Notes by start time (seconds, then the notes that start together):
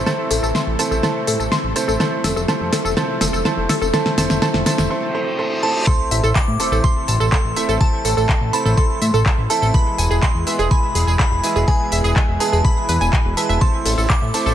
Already playing: C3 E3 A3 E4 A4
0.06 A3 C4 E4 A4 C5 A5, snare, tambourine
0.31 A1 A4, open hi-hat, tambourine
0.43 A1 A4, tambourine
0.55 C6, snare, tambourine
0.67 A1
0.79 A3 C4 E4 A4 C5 A5, open hi-hat, tambourine
0.91 A1 A4, tambourine
1.03 A3 C4 E4 A4 C5 A5, snare, tambourine
1.27 A2 A4, open hi-hat, tambourine
1.40 A1 A4, tambourine
1.52 C6, snare, tambourine
1.64 A1
1.76 A3 C4 E4 A4 C5 A5, open hi-hat, tambourine
1.88 A1 A4, tambourine
2.00 C3 F3 A3 C4 E4 A4 C5 A5, snare, tambourine
2.24 F1 A4, snare, open hi-hat, tambourine
2.36 F1 A4, tambourine
2.48 A3 C4 E4 A4 C5 A5, snare, tambourine
2.61 F2
2.73 A4, snare, open hi-hat, tambourine
2.85 F1 A4, tambourine
2.97 A3 C4 E4 A4 C5 A5, snare, tambourine
3.21 F1 A4, snare, open hi-hat, tambourine
3.33 F1 A4, tambourine
3.45 A3 C4 E4 A4 C5 A5, snare, tambourine
3.57 F1
3.69 A4, snare, open hi-hat, tambourine
3.82 F1 A4, tambourine
3.94 A3 C4 E4 A4 C5 A5, snare, tambourine
4.06 snare
4.18 F1 A3 C4 E4 A4 C5 A5, snare, open hi-hat, tambourine
4.30 F1, snare, tambourine
4.42 A3 C4 E4 A4 C5 A5, snare, tambourine
4.54 F1, snare
4.66 A3 C4 E4 A4 C5 A5, snare, open hi-hat, tambourine
4.78 F1, snare, tambourine
4.90 A3 C4 E4 A4 C5, reverse cymbal
5.15 A3 C4 E4 A4 C5
5.39 A3 C4 E4 A4 C5
5.63 A3 C4 E4 A4 C5 A5
5.87 C3 E3 A3 C4 E4 A4 C5 C6, kick, tambourine, sub drop
6.11 A1 E5, open hi-hat, tambourine
6.24 A1 A4, tambourine
6.35 A5 D6, kick, clap, tambourine
6.48 A2
6.60 A3 C4 E4 A4 C5, open hi-hat, tambourine
6.72 A1 A4, tambourine
6.84 C6, kick, tambourine
7.08 A1 A5, open hi-hat, tambourine
7.20 A1 A4, tambourine
7.32 A4 C6, kick, clap, tambourine
7.44 A1
7.56 A3 C4 E4 A4 E5, open hi-hat, tambourine
7.69 A1 A4, tambourine
7.80 A3 C4 E4 A4 C5 A5, kick, tambourine
8.05 A1 A4, open hi-hat, tambourine
8.17 A1 A4, tambourine
8.29 C6, kick, clap, tambourine
8.41 A1
8.53 A3 C4 E4 A4 C5 A5 B5, open hi-hat, tambourine
8.65 A1 A4, tambourine
8.77 A4 C6, kick, tambourine
9.02 A2 E5, open hi-hat, tambourine
9.14 A1 A4, tambourine
9.26 A5, kick, clap, tambourine
9.38 A1
9.50 A3 C4 E4 A4 E5 A5, open hi-hat, tambourine
9.62 A1 A4, tambourine
9.74 B2 G#3 B3 E4 G#4 B4 B5, kick, tambourine
9.98 E1 G#5, open hi-hat, tambourine
10.11 E1 G#4, tambourine
10.22 G#4 C6, kick, clap, tambourine
10.35 E2
10.47 G#3 B3 E4 G#4 B4 E5, open hi-hat, tambourine
10.59 E1 G#4, tambourine
10.71 G#5 B5, kick, tambourine
10.95 E1 G#4, open hi-hat, tambourine
11.07 E1 G#4, tambourine
11.19 B5, kick, clap, tambourine
11.32 E1
11.44 G#3 B3 E4 G#4 E5 G#5, open hi-hat, tambourine
11.56 E1 G#4, tambourine
11.68 G#3 B3 E4 G#4 B4 G#5, kick, tambourine
11.92 E1 E5, open hi-hat, tambourine
12.04 E1 G#4, tambourine
12.16 G#5, kick, clap
12.28 E1
12.40 G#3 B3 E4 G#4 B4 A5, open hi-hat, tambourine
12.53 E1 G#4, tambourine
12.65 B5, kick, tambourine
12.89 E2 B4, open hi-hat, tambourine
13.01 E1 G#5, tambourine
13.13 G#5, kick, clap, tambourine
13.25 E1
13.37 G#3 B3 E4 G#4 B4 E5 A5, open hi-hat, tambourine
13.49 E1 E5, tambourine
13.61 C3 A3 C4 A4 C5 A5 C6, kick, tambourine
13.86 A1 A4, open hi-hat, ride, tambourine
13.98 A1 A4, tambourine
14.10 C6 D6, kick, clap, tambourine
14.22 A2
14.34 A3 C4 E4 A4 C5 A5, open hi-hat, ride, tambourine
14.46 A1 A4, tambourine